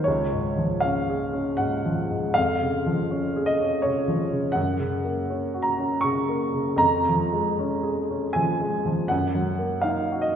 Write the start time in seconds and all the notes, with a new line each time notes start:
0.04 C#2 C#5
0.33 G#2
0.58 F3
0.80 C#4 F5
1.10 G#4
1.33 C#4
1.57 G#2 F#5
1.85 F3
2.11 G#2
2.34 F2 F5
2.61 C#3
2.86 F3
3.11 C#4
3.36 G#4
3.46 D#5
3.61 C#4
3.82 C#3 C#5
4.08 F3
4.31 C#3
4.52 F#2 F#5
4.79 C#3
5.04 A#3
5.30 C#4
5.54 F#4
5.62 A#5
5.78 C#4
6.01 C#3 C#6
6.29 A#3
6.54 C#3
6.76 F2 A#5
7.09 F3
7.33 G#3
7.59 C#4
7.83 G#4
8.11 C#4
8.33 F3 G#5
8.61 G#3
8.86 F3
9.08 F#2 F#5
9.35 F#3
9.58 A#3
9.82 D#4 F5
10.12 F#4
10.22 D#5